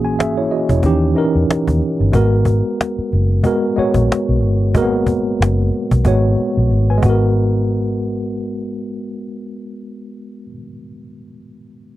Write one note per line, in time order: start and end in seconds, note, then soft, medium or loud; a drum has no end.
0.00 0.18 A#1 loud
0.00 0.53 E3 medium
0.00 0.54 A#3 medium
0.00 0.54 C#4 medium
0.00 0.52 F#4 medium
0.00 0.19 G#4 medium
0.05 0.17 G#5 medium
0.18 0.48 G#1 medium
0.18 0.36 G#4 medium
0.18 0.36 E5 medium
0.18 cajon slap loud
0.37 0.50 E4 soft
0.37 0.50 C#5 medium
0.51 0.69 F#4 medium
0.51 0.69 D#5 medium
0.51 cajon slap soft
0.69 0.85 E1 medium
0.69 1.01 E4 soft
0.69 1.01 C#5 medium
0.69 cajon bass medium
0.83 1.13 D#2 loud
0.83 1.09 E3 medium
0.83 1.10 C#4 medium
0.83 1.10 D#4 medium
0.83 1.11 G4 medium
0.83 cajon bass medium
1.15 1.92 E3 medium
1.15 1.93 C#4 medium
1.15 1.93 D#4 medium
1.15 1.94 A#4 medium
1.15 cajon slap soft
1.35 1.47 E2 medium
1.35 cajon slap soft
1.49 muted fingered electric bass stroke soft
1.49 cajon slap loud
1.68 1.80 D#2 medium
1.68 cajon bass medium
1.82 cajon slap soft
2.00 2.12 G1 medium
2.12 2.61 G#1 loud
2.12 3.14 G#3 medium
2.12 3.14 B3 medium
2.12 3.15 F#4 medium
2.12 3.15 A#4 medium
2.12 cajon bass loud
2.35 cajon slap soft
2.45 cajon bass medium
2.81 cajon slap loud
2.98 muted fingered electric bass stroke soft
3.13 3.42 F#1 medium
3.13 cajon slap soft
3.32 cajon slap soft
3.43 3.70 G#3 medium
3.43 3.70 B3 medium
3.43 3.71 F#4 medium
3.43 3.71 A#4 medium
3.43 cajon bass medium
3.76 4.53 G#3 medium
3.76 4.54 B3 medium
3.76 4.54 F#4 medium
3.76 4.55 C#5 medium
3.76 muted fingered electric bass stroke soft
3.76 cajon slap soft
3.94 4.07 A#1 medium
3.94 cajon bass medium
3.94 cajon slap soft
4.12 cajon slap loud
4.29 4.43 B1 medium
4.29 cajon slap soft
4.43 4.75 G1 medium
4.43 cajon slap soft
4.75 5.36 G#1 medium
4.75 5.75 G#3 medium
4.75 4.82 A#3 medium
4.75 5.76 F#4 medium
4.75 5.77 A#4 medium
4.75 cajon bass loud
4.82 5.79 B3 medium
4.96 cajon slap soft
5.06 cajon bass medium
5.40 5.70 F#1 medium
5.40 cajon slap loud
5.61 cajon slap soft
5.74 cajon slap soft
5.91 6.04 B1 medium
5.91 cajon bass medium
5.91 cajon slap soft
6.05 6.35 G#1 loud
6.05 6.31 G#3 medium
6.05 6.31 B3 medium
6.05 6.32 F#4 medium
6.05 6.32 C#5 medium
6.05 cajon bass medium
6.37 muted fingered electric bass stroke soft
6.37 cajon slap soft
6.57 6.69 A#1 medium
6.70 7.00 G#1 medium
6.70 cajon slap soft
6.90 7.03 B4 soft
6.90 7.02 G#5 medium
6.98 10.45 G#3 medium
7.02 10.51 G#1 medium
7.02 10.49 B3 medium
7.02 10.53 F#4 medium
7.02 cajon bass medium
7.09 10.57 A#4 medium